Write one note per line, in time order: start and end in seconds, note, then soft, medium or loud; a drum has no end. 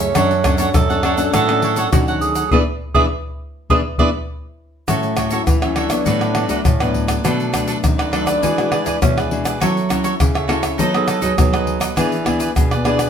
0.00 0.12 C#3 medium
0.00 0.11 A3 medium
0.00 0.70 C#4 medium
0.00 0.11 E4 medium
0.00 0.11 G#4 medium
0.00 0.14 A4 soft
0.00 0.14 C#5 soft
0.00 0.13 E5 medium
0.15 0.66 F#2 loud
0.15 0.72 F#3 medium
0.15 0.33 C#4 medium
0.15 0.43 D4 medium
0.15 0.33 D4 medium
0.15 0.44 A4 medium
0.15 0.33 A4 medium
0.15 0.44 C#5 medium
0.15 0.45 F#5 medium
0.15 pandeiro medium
0.15 tamborim medium
0.15 shaker medium
0.15 surdo medium
0.31 pandeiro soft
0.31 shaker soft
0.44 0.55 C#4 medium
0.44 0.57 D4 soft
0.44 0.55 D4 medium
0.44 0.58 A4 soft
0.44 0.55 A4 medium
0.44 0.58 C#5 soft
0.44 0.59 F#5 soft
0.44 pandeiro medium
0.44 tamborim medium
0.44 shaker medium
0.44 surdo medium
0.58 0.84 C#4 medium
0.58 0.68 D4 medium
0.58 0.84 D4 medium
0.58 0.68 A4 medium
0.58 0.84 A4 medium
0.58 0.68 C#5 medium
0.58 0.69 F#5 medium
0.58 pandeiro medium
0.58 shaker medium
0.74 1.25 F#2 medium
0.74 1.31 F#3 medium
0.74 1.29 A4 loud
0.74 pandeiro medium
0.74 tamborim medium
0.74 shaker medium
0.74 surdo loud
0.90 1.00 C#4 medium
0.90 1.00 D4 medium
0.90 1.00 A4 medium
0.90 1.03 A4 soft
0.90 1.04 C#5 soft
0.90 1.03 F#5 soft
0.90 pandeiro soft
0.90 shaker soft
1.03 1.14 C#4 medium
1.03 1.17 D4 medium
1.03 1.14 D4 medium
1.03 1.18 A4 medium
1.03 1.14 A4 medium
1.03 1.17 C#5 medium
1.03 1.16 F#5 medium
1.03 pandeiro medium
1.03 tamborim medium
1.17 1.43 C#4 medium
1.17 1.43 D4 medium
1.17 1.43 A4 medium
1.17 1.33 A4 soft
1.17 1.32 C#5 soft
1.17 1.32 F#5 soft
1.17 pandeiro medium
1.17 shaker medium
1.34 1.84 A2 loud
1.34 1.90 F#3 medium
1.34 1.61 D4 medium
1.34 1.89 A4 loud
1.34 1.62 A4 medium
1.34 1.63 C#5 medium
1.34 1.63 F#5 medium
1.34 pandeiro medium
1.34 tamborim medium
1.34 shaker medium
1.34 surdo medium
1.49 1.74 C#4 medium
1.49 1.74 D4 medium
1.49 1.74 A4 medium
1.49 pandeiro soft
1.49 tamborim medium
1.49 shaker soft
1.62 1.76 D4 soft
1.62 1.76 A4 medium
1.62 1.77 C#5 medium
1.62 1.77 F#5 medium
1.62 pandeiro medium
1.76 1.87 C#4 medium
1.76 1.86 D4 medium
1.76 1.88 D4 medium
1.76 1.87 A4 medium
1.76 1.88 A4 medium
1.76 1.87 C#5 medium
1.76 1.87 F#5 medium
1.76 pandeiro medium
1.76 shaker medium
1.92 2.43 D#3 medium
1.92 2.49 F#3 medium
1.92 2.31 C#4 medium
1.92 2.31 D4 medium
1.92 2.06 F#4 medium
1.92 2.31 A4 medium
1.92 pandeiro medium
1.92 tamborim medium
1.92 shaker medium
1.92 surdo loud
2.08 2.37 A4 soft
2.08 2.36 C#5 soft
2.08 2.34 F#5 medium
2.08 pandeiro soft
2.08 shaker soft
2.21 2.49 G#4 medium
2.21 pandeiro medium
2.21 shaker medium
2.35 2.51 A4 soft
2.35 2.51 C#5 soft
2.35 2.50 F#5 soft
2.35 pandeiro medium
2.35 shaker medium
2.51 2.63 E3 medium
2.51 2.62 B3 medium
2.51 2.62 D4 medium
2.51 2.62 E4 medium
2.51 2.59 G#4 loud
2.51 2.62 B4 medium
2.51 2.62 D5 medium
2.51 2.62 E5 medium
2.51 surdo loud
2.94 3.06 E3 medium
2.94 3.05 B3 medium
2.94 3.05 D4 medium
2.94 3.05 E4 medium
2.94 3.02 G#4 medium
2.94 3.05 B4 medium
2.94 3.05 D5 medium
2.94 3.05 E5 medium
2.94 surdo loud
3.70 3.81 E3 loud
3.70 3.80 B3 medium
3.70 3.79 D4 loud
3.70 3.80 E4 loud
3.70 3.77 G#4 medium
3.70 3.80 B4 medium
3.70 3.80 D5 medium
3.70 3.80 E5 medium
3.70 surdo loud
3.98 4.10 E3 medium
3.98 4.09 B3 loud
3.98 4.09 D4 medium
3.98 4.09 E4 medium
3.98 4.06 G#4 medium
3.98 4.09 B4 medium
3.98 4.09 D5 medium
3.98 4.09 E5 medium
3.98 surdo loud
4.88 5.44 A2 soft
4.88 5.38 A2 loud
4.88 5.28 F#3 soft
4.88 5.28 C#4 medium
4.88 5.28 E4 medium
4.88 5.15 F#4 medium
4.88 5.16 A4 medium
4.88 5.17 C#5 medium
4.88 5.17 E5 medium
4.88 pandeiro medium
4.88 tamborim medium
4.88 shaker medium
4.88 surdo medium
5.03 pandeiro soft
5.03 shaker soft
5.17 5.30 F#4 soft
5.17 5.31 A4 medium
5.17 5.31 C#5 medium
5.17 5.32 E5 medium
5.17 pandeiro medium
5.17 tamborim medium
5.17 shaker medium
5.17 surdo soft
5.31 5.57 F#3 soft
5.31 5.57 C#4 medium
5.31 5.57 E4 medium
5.31 5.41 F#4 medium
5.31 5.41 A4 medium
5.31 5.41 C#5 medium
5.31 5.42 E5 medium
5.31 pandeiro medium
5.31 shaker medium
5.47 5.97 E3 medium
5.47 6.03 E3 medium
5.47 pandeiro medium
5.47 tamborim medium
5.47 shaker medium
5.47 surdo medium
5.62 5.87 F#3 medium
5.62 5.87 C#4 medium
5.62 5.88 E4 medium
5.62 5.75 A4 soft
5.62 5.76 C#5 soft
5.62 5.76 E5 soft
5.62 pandeiro soft
5.62 tamborim medium
5.62 shaker soft
5.76 6.67 D4 medium
5.76 5.90 F#4 medium
5.76 5.90 A4 medium
5.76 5.90 C#5 medium
5.76 5.89 E5 medium
5.76 pandeiro medium
5.76 tamborim medium
5.90 6.31 F#3 medium
5.90 6.31 B3 medium
5.90 6.31 D4 medium
5.90 6.05 A4 soft
5.90 6.05 C#5 soft
5.90 6.04 E5 soft
5.90 pandeiro medium
5.90 tamborim medium
5.90 shaker medium
5.90 surdo soft
6.05 6.44 A2 loud
6.05 6.63 A2 medium
6.05 6.34 F#4 medium
6.05 6.34 A4 medium
6.05 6.35 B4 medium
6.05 6.35 D5 medium
6.05 pandeiro medium
6.05 shaker medium
6.05 surdo medium
6.21 pandeiro soft
6.21 tamborim medium
6.21 shaker soft
6.35 6.63 F#3 medium
6.35 6.64 B3 medium
6.35 6.64 D4 medium
6.35 6.48 F#4 soft
6.35 6.49 A4 soft
6.35 6.49 B4 soft
6.35 6.49 D5 medium
6.35 pandeiro medium
6.35 tamborim medium
6.49 6.62 A3 medium
6.49 6.59 F#4 medium
6.49 6.59 A4 medium
6.49 6.59 B4 medium
6.49 6.60 D5 medium
6.49 pandeiro medium
6.49 shaker medium
6.49 surdo soft
6.65 7.16 A2 medium
6.65 7.22 A2 medium
6.65 6.95 C#4 medium
6.65 pandeiro medium
6.65 tamborim medium
6.65 shaker medium
6.65 surdo loud
6.80 7.20 F#3 medium
6.80 7.20 B3 medium
6.80 7.21 D4 medium
6.80 7.09 A4 soft
6.80 7.08 B4 soft
6.80 7.06 D5 soft
6.80 pandeiro soft
6.80 tamborim medium
6.80 shaker soft
6.94 pandeiro soft
6.94 surdo soft
7.08 7.23 A4 soft
7.08 7.23 B4 soft
7.08 7.22 D5 soft
7.08 pandeiro medium
7.08 tamborim medium
7.08 shaker medium
7.08 surdo soft
7.24 7.75 B2 loud
7.24 7.81 B2 medium
7.24 7.50 F#3 medium
7.24 7.50 A3 medium
7.24 7.51 D4 medium
7.24 7.50 D4 medium
7.24 7.52 A4 medium
7.24 7.53 B4 medium
7.24 7.54 D5 medium
7.24 pandeiro medium
7.24 tamborim medium
7.24 shaker medium
7.24 surdo medium
7.40 pandeiro soft
7.40 shaker soft
7.52 8.08 F#3 soft
7.52 8.09 A3 medium
7.52 7.66 D4 soft
7.52 8.09 D4 medium
7.52 7.67 A4 medium
7.52 7.67 B4 medium
7.52 7.67 D5 medium
7.52 pandeiro medium
7.52 tamborim medium
7.52 shaker medium
7.52 surdo soft
7.67 7.77 D4 medium
7.67 7.78 A4 medium
7.67 7.78 B4 medium
7.67 7.78 D5 medium
7.67 pandeiro medium
7.67 shaker medium
7.83 8.40 F#2 medium
7.83 8.34 D#3 medium
7.83 pandeiro medium
7.83 tamborim medium
7.83 shaker medium
7.83 surdo medium
7.98 8.12 A4 soft
7.98 8.12 B4 soft
7.98 8.12 D5 soft
7.98 pandeiro soft
7.98 tamborim medium
7.98 shaker soft
8.12 8.40 F#3 medium
8.12 8.40 A3 medium
8.12 8.26 D4 medium
8.12 8.98 D4 loud
8.12 8.41 D4 medium
8.12 8.27 A4 medium
8.12 8.26 B4 medium
8.12 8.25 D5 medium
8.12 pandeiro medium
8.12 tamborim medium
8.26 8.42 A4 soft
8.26 8.41 B4 soft
8.26 8.41 D5 soft
8.26 pandeiro medium
8.26 tamborim medium
8.26 shaker medium
8.26 surdo soft
8.42 8.80 E3 loud
8.42 8.99 E3 medium
8.42 8.52 G#3 medium
8.42 8.52 D4 medium
8.42 8.70 E4 medium
8.42 8.52 F#4 medium
8.42 8.71 G#4 medium
8.42 8.71 B4 medium
8.42 8.72 D5 medium
8.42 pandeiro medium
8.42 shaker medium
8.42 surdo medium
8.58 8.98 G#3 medium
8.58 8.98 D4 medium
8.58 8.98 F#4 medium
8.58 pandeiro soft
8.58 tamborim medium
8.58 shaker soft
8.71 8.85 E4 soft
8.71 8.85 G#4 medium
8.71 8.85 B4 medium
8.71 8.86 D5 medium
8.71 pandeiro medium
8.71 tamborim medium
8.86 8.99 E3 medium
8.86 8.96 E4 medium
8.86 8.96 G#4 medium
8.86 8.96 B4 medium
8.86 8.96 D5 medium
8.86 pandeiro medium
8.86 shaker medium
8.86 surdo soft
9.02 9.58 B2 medium
9.02 9.52 E3 medium
9.02 9.27 G#3 medium
9.02 9.20 C#4 medium
9.02 9.27 D4 medium
9.02 9.27 F#4 medium
9.02 pandeiro medium
9.02 tamborim medium
9.02 shaker medium
9.02 surdo loud
9.17 9.46 G#4 soft
9.17 9.45 B4 soft
9.17 9.44 D5 soft
9.17 pandeiro soft
9.17 tamborim medium
9.17 shaker soft
9.31 9.56 G#3 medium
9.31 9.56 D4 medium
9.31 9.57 F#4 medium
9.31 pandeiro medium
9.45 9.60 G#4 soft
9.45 9.60 B4 soft
9.45 9.59 D5 soft
9.45 pandeiro medium
9.45 tamborim medium
9.45 shaker medium
9.45 surdo soft
9.60 10.17 F#3 medium
9.60 10.11 F#3 loud
9.60 9.79 C#4 medium
9.60 9.79 E4 soft
9.60 9.88 F#4 medium
9.60 9.89 A4 medium
9.60 9.79 A4 medium
9.60 9.90 C#5 medium
9.60 9.90 E5 medium
9.60 pandeiro medium
9.60 tamborim medium
9.60 shaker medium
9.60 surdo medium
9.77 pandeiro soft
9.77 shaker soft
9.89 10.45 C#4 medium
9.89 10.45 E4 soft
9.89 10.02 F#4 soft
9.89 10.03 A4 medium
9.89 10.45 A4 medium
9.89 10.03 C#5 medium
9.89 10.04 E5 medium
9.89 pandeiro medium
9.89 tamborim medium
9.89 shaker medium
9.89 surdo soft
10.04 10.13 F#4 medium
10.04 10.14 A4 medium
10.04 10.14 C#5 medium
10.04 10.14 E5 medium
10.04 pandeiro medium
10.04 shaker medium
10.20 10.76 C#3 medium
10.20 10.70 C#3 medium
10.20 pandeiro medium
10.20 tamborim medium
10.20 shaker medium
10.20 surdo loud
10.34 10.47 A4 soft
10.34 10.48 C#5 soft
10.34 10.48 E5 soft
10.34 pandeiro soft
10.34 tamborim medium
10.34 shaker soft
10.48 10.77 C#4 medium
10.48 10.77 E4 medium
10.48 10.62 F#4 medium
10.48 10.63 A4 medium
10.48 10.77 A4 medium
10.48 10.63 C#5 medium
10.48 10.61 E5 medium
10.48 pandeiro medium
10.48 tamborim medium
10.63 10.78 A4 soft
10.63 10.78 C#5 soft
10.63 10.77 E5 soft
10.63 pandeiro medium
10.63 tamborim medium
10.63 shaker medium
10.63 surdo soft
10.78 11.35 F#3 medium
10.78 11.17 F#3 loud
10.78 10.89 B3 medium
10.78 11.06 D#4 medium
10.78 10.90 D#4 medium
10.78 11.07 A4 medium
10.78 10.90 A4 medium
10.78 11.08 B4 medium
10.78 11.08 D#5 medium
10.78 pandeiro medium
10.78 shaker medium
10.78 surdo medium
10.94 11.34 B3 medium
10.94 11.34 D#4 medium
10.94 11.10 G#4 medium
10.94 11.34 A4 medium
10.94 pandeiro soft
10.94 tamborim medium
10.94 shaker soft
11.07 11.20 D#4 soft
11.07 11.24 A4 medium
11.07 11.21 A4 medium
11.07 11.21 B4 medium
11.07 11.22 D#5 medium
11.07 pandeiro medium
11.07 tamborim medium
11.07 shaker medium
11.22 11.35 F#3 medium
11.22 11.32 D#4 medium
11.22 11.82 G#4 medium
11.22 11.32 A4 medium
11.22 11.32 B4 medium
11.22 11.32 D#5 medium
11.22 pandeiro medium
11.22 shaker medium
11.22 surdo soft
11.38 11.88 F#3 medium
11.38 11.94 F#3 medium
11.38 11.76 B3 medium
11.38 11.76 D#4 medium
11.38 pandeiro medium
11.38 tamborim medium
11.38 shaker medium
11.38 surdo loud
11.53 11.81 A4 soft
11.53 11.80 B4 soft
11.53 11.79 D#5 soft
11.53 pandeiro soft
11.53 tamborim medium
11.53 shaker soft
11.67 pandeiro medium
11.80 11.96 A4 soft
11.80 11.96 B4 soft
11.80 11.95 D#5 soft
11.80 pandeiro medium
11.80 tamborim medium
11.80 shaker medium
11.80 surdo soft
11.96 12.47 E3 loud
11.96 12.54 E3 medium
11.96 12.15 B3 medium
11.96 12.15 D4 medium
11.96 12.24 E4 medium
11.96 12.25 G#4 medium
11.96 12.15 G#4 medium
11.96 12.25 B4 medium
11.96 12.26 D5 medium
11.96 pandeiro medium
11.96 tamborim medium
11.96 shaker medium
11.96 surdo medium
12.12 pandeiro soft
12.12 shaker soft
12.25 12.51 B3 medium
12.25 12.52 D4 medium
12.25 12.38 E4 medium
12.25 12.39 G#4 soft
12.25 12.52 G#4 medium
12.25 12.39 B4 soft
12.25 12.39 D5 medium
12.25 pandeiro medium
12.25 tamborim medium
12.25 surdo soft
12.39 12.50 E4 medium
12.39 12.50 G#4 medium
12.39 12.50 B4 medium
12.39 12.50 D5 medium
12.39 pandeiro medium
12.39 shaker medium
12.56 13.07 B2 medium
12.56 13.10 B2 medium
12.56 12.74 B3 medium
12.56 12.74 D4 medium
12.56 12.74 G#4 medium
12.56 pandeiro medium
12.56 tamborim medium
12.56 shaker medium
12.56 surdo medium
12.71 12.84 G#4 soft
12.71 12.85 B4 soft
12.71 12.85 D5 soft
12.71 pandeiro soft
12.71 tamborim medium
12.71 shaker soft
12.84 13.10 B3 medium
12.84 13.10 D4 medium
12.84 12.99 E4 medium
12.84 12.99 G#4 medium
12.84 13.10 G#4 medium
12.84 12.99 B4 medium
12.84 12.97 D5 medium
12.84 pandeiro medium
12.84 tamborim medium
12.98 13.10 G#4 soft
12.98 13.10 B4 soft
12.98 13.10 D5 medium
12.98 pandeiro medium
12.98 tamborim medium
12.98 shaker medium
12.98 surdo soft